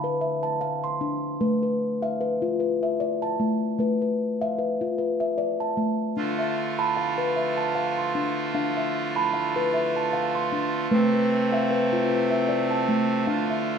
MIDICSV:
0, 0, Header, 1, 3, 480
1, 0, Start_track
1, 0, Tempo, 791557
1, 857, Time_signature, 3, 2, 24, 8
1, 8359, End_track
2, 0, Start_track
2, 0, Title_t, "Steel tongue drum"
2, 0, Program_c, 0, 114
2, 0, Note_on_c, 0, 50, 63
2, 0, Note_on_c, 0, 77, 50
2, 0, Note_on_c, 0, 81, 50
2, 23, Note_on_c, 0, 71, 60
2, 129, Note_on_c, 0, 76, 54
2, 132, Note_off_c, 0, 81, 0
2, 261, Note_on_c, 0, 81, 56
2, 266, Note_off_c, 0, 71, 0
2, 267, Note_off_c, 0, 77, 0
2, 370, Note_on_c, 0, 77, 67
2, 507, Note_off_c, 0, 76, 0
2, 507, Note_on_c, 0, 84, 52
2, 611, Note_on_c, 0, 62, 62
2, 612, Note_off_c, 0, 81, 0
2, 613, Note_off_c, 0, 77, 0
2, 831, Note_off_c, 0, 50, 0
2, 853, Note_on_c, 0, 57, 68
2, 854, Note_on_c, 0, 71, 55
2, 855, Note_off_c, 0, 62, 0
2, 856, Note_off_c, 0, 84, 0
2, 979, Note_off_c, 0, 71, 0
2, 986, Note_on_c, 0, 71, 47
2, 1096, Note_off_c, 0, 57, 0
2, 1227, Note_on_c, 0, 77, 61
2, 1229, Note_on_c, 0, 76, 51
2, 1331, Note_off_c, 0, 71, 0
2, 1339, Note_on_c, 0, 71, 55
2, 1467, Note_on_c, 0, 65, 60
2, 1470, Note_off_c, 0, 77, 0
2, 1568, Note_off_c, 0, 71, 0
2, 1576, Note_on_c, 0, 71, 53
2, 1577, Note_off_c, 0, 76, 0
2, 1710, Note_off_c, 0, 65, 0
2, 1715, Note_on_c, 0, 76, 54
2, 1820, Note_on_c, 0, 74, 62
2, 1952, Note_off_c, 0, 71, 0
2, 1954, Note_on_c, 0, 81, 56
2, 2060, Note_off_c, 0, 74, 0
2, 2060, Note_on_c, 0, 57, 64
2, 2061, Note_off_c, 0, 76, 0
2, 2288, Note_off_c, 0, 57, 0
2, 2296, Note_on_c, 0, 57, 60
2, 2301, Note_off_c, 0, 81, 0
2, 2303, Note_on_c, 0, 71, 56
2, 2429, Note_off_c, 0, 71, 0
2, 2437, Note_on_c, 0, 71, 49
2, 2677, Note_on_c, 0, 76, 52
2, 2678, Note_on_c, 0, 77, 57
2, 2773, Note_off_c, 0, 71, 0
2, 2780, Note_on_c, 0, 71, 50
2, 2917, Note_off_c, 0, 77, 0
2, 2918, Note_on_c, 0, 65, 60
2, 3014, Note_off_c, 0, 71, 0
2, 3021, Note_on_c, 0, 71, 51
2, 3022, Note_off_c, 0, 76, 0
2, 3154, Note_on_c, 0, 76, 53
2, 3157, Note_off_c, 0, 65, 0
2, 3261, Note_on_c, 0, 74, 61
2, 3396, Note_off_c, 0, 71, 0
2, 3398, Note_on_c, 0, 81, 50
2, 3493, Note_off_c, 0, 57, 0
2, 3501, Note_off_c, 0, 76, 0
2, 3501, Note_on_c, 0, 57, 62
2, 3502, Note_off_c, 0, 74, 0
2, 3740, Note_on_c, 0, 62, 64
2, 3742, Note_off_c, 0, 57, 0
2, 3743, Note_off_c, 0, 81, 0
2, 3873, Note_on_c, 0, 76, 45
2, 3981, Note_off_c, 0, 62, 0
2, 4115, Note_on_c, 0, 83, 59
2, 4117, Note_on_c, 0, 81, 51
2, 4221, Note_off_c, 0, 76, 0
2, 4226, Note_on_c, 0, 77, 56
2, 4353, Note_on_c, 0, 71, 60
2, 4356, Note_off_c, 0, 83, 0
2, 4463, Note_off_c, 0, 81, 0
2, 4464, Note_on_c, 0, 76, 51
2, 4592, Note_on_c, 0, 81, 56
2, 4595, Note_off_c, 0, 71, 0
2, 4598, Note_off_c, 0, 77, 0
2, 4701, Note_on_c, 0, 77, 62
2, 4837, Note_off_c, 0, 76, 0
2, 4838, Note_on_c, 0, 84, 51
2, 4940, Note_off_c, 0, 81, 0
2, 4941, Note_off_c, 0, 77, 0
2, 4941, Note_on_c, 0, 62, 59
2, 5173, Note_off_c, 0, 62, 0
2, 5180, Note_on_c, 0, 62, 63
2, 5183, Note_off_c, 0, 84, 0
2, 5184, Note_on_c, 0, 77, 60
2, 5318, Note_on_c, 0, 76, 50
2, 5555, Note_on_c, 0, 83, 56
2, 5557, Note_off_c, 0, 77, 0
2, 5559, Note_on_c, 0, 81, 50
2, 5661, Note_on_c, 0, 77, 54
2, 5663, Note_off_c, 0, 76, 0
2, 5795, Note_off_c, 0, 83, 0
2, 5798, Note_on_c, 0, 71, 62
2, 5903, Note_off_c, 0, 81, 0
2, 5906, Note_on_c, 0, 76, 55
2, 6035, Note_off_c, 0, 77, 0
2, 6036, Note_off_c, 0, 71, 0
2, 6042, Note_on_c, 0, 81, 58
2, 6144, Note_on_c, 0, 77, 66
2, 6276, Note_off_c, 0, 76, 0
2, 6276, Note_on_c, 0, 84, 56
2, 6375, Note_off_c, 0, 62, 0
2, 6382, Note_off_c, 0, 77, 0
2, 6382, Note_on_c, 0, 62, 62
2, 6384, Note_off_c, 0, 81, 0
2, 6618, Note_on_c, 0, 57, 74
2, 6619, Note_on_c, 0, 71, 55
2, 6620, Note_off_c, 0, 62, 0
2, 6620, Note_off_c, 0, 84, 0
2, 6748, Note_off_c, 0, 71, 0
2, 6755, Note_on_c, 0, 71, 50
2, 6858, Note_off_c, 0, 57, 0
2, 6987, Note_on_c, 0, 76, 55
2, 6989, Note_on_c, 0, 77, 65
2, 7094, Note_off_c, 0, 71, 0
2, 7102, Note_on_c, 0, 71, 59
2, 7230, Note_off_c, 0, 77, 0
2, 7232, Note_on_c, 0, 65, 61
2, 7329, Note_off_c, 0, 71, 0
2, 7334, Note_off_c, 0, 76, 0
2, 7337, Note_on_c, 0, 71, 55
2, 7463, Note_on_c, 0, 76, 57
2, 7470, Note_off_c, 0, 65, 0
2, 7572, Note_on_c, 0, 74, 61
2, 7705, Note_on_c, 0, 81, 54
2, 7709, Note_off_c, 0, 71, 0
2, 7811, Note_off_c, 0, 76, 0
2, 7812, Note_off_c, 0, 74, 0
2, 7812, Note_on_c, 0, 57, 60
2, 8048, Note_on_c, 0, 62, 69
2, 8049, Note_on_c, 0, 77, 55
2, 8051, Note_off_c, 0, 81, 0
2, 8052, Note_off_c, 0, 57, 0
2, 8186, Note_on_c, 0, 76, 50
2, 8289, Note_off_c, 0, 62, 0
2, 8359, Note_off_c, 0, 76, 0
2, 8359, Note_off_c, 0, 77, 0
2, 8359, End_track
3, 0, Start_track
3, 0, Title_t, "Pipe organ"
3, 0, Program_c, 1, 19
3, 3739, Note_on_c, 1, 65, 55
3, 3741, Note_on_c, 1, 50, 52
3, 3746, Note_on_c, 1, 57, 48
3, 6594, Note_off_c, 1, 50, 0
3, 6594, Note_off_c, 1, 65, 0
3, 6623, Note_on_c, 1, 48, 55
3, 6624, Note_on_c, 1, 60, 63
3, 8040, Note_off_c, 1, 48, 0
3, 8041, Note_off_c, 1, 60, 0
3, 8051, Note_on_c, 1, 65, 57
3, 8057, Note_on_c, 1, 50, 51
3, 8359, Note_off_c, 1, 50, 0
3, 8359, Note_off_c, 1, 57, 0
3, 8359, Note_off_c, 1, 65, 0
3, 8359, End_track
0, 0, End_of_file